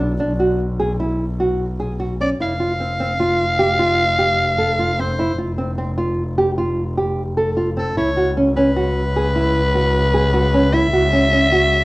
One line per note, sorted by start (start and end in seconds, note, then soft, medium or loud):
0.00 2.41 B1 medium
0.00 0.11 D4 medium
0.20 0.32 D4 medium
0.40 0.64 F#4 medium
0.80 0.92 G#4 medium
1.00 1.24 E4 medium
1.40 1.64 F#4 medium
1.80 1.92 G#4 medium
2.00 2.12 F#4 medium
2.21 2.32 C#4 medium
2.21 2.30 D5 medium
2.39 7.98 F1 medium
2.39 2.52 E4 medium
2.39 5.02 F5 loud
2.60 2.72 F4 medium
2.80 2.92 C4 medium
3.00 3.12 C4 medium
3.20 3.44 F4 medium
3.59 3.71 G4 medium
3.79 4.03 F4 medium
4.18 4.43 G4 medium
4.58 4.71 A4 medium
4.79 4.91 F4 medium
4.99 5.11 C4 medium
4.99 5.39 C5 medium
5.19 5.31 E4 medium
5.38 5.51 F4 medium
5.58 5.70 C4 medium
5.78 5.90 C4 medium
5.97 6.22 F4 medium
6.38 6.50 G4 medium
6.58 6.82 F4 medium
6.97 7.22 G4 medium
7.37 7.49 A4 medium
7.57 7.69 F4 medium
7.77 7.89 C4 medium
7.77 7.96 A4 medium
7.97 11.84 C#2 medium
7.97 8.09 E4 medium
7.97 8.34 C#5 medium
8.17 8.29 F#4 medium
8.37 8.49 C#4 medium
8.57 8.69 C#4 medium
8.57 10.75 B4 medium
8.76 9.01 F#4 medium
9.16 9.28 G#4 medium
9.36 9.60 E4 medium
9.75 9.99 F#4 medium
10.14 10.27 G#4 medium
10.34 10.46 F#4 medium
10.54 10.66 C#4 medium
10.73 10.86 E4 medium
10.73 11.84 E5 loud
10.93 11.06 F#4 medium
11.13 11.25 C#4 medium
11.33 11.45 C#4 medium
11.52 11.77 F#4 medium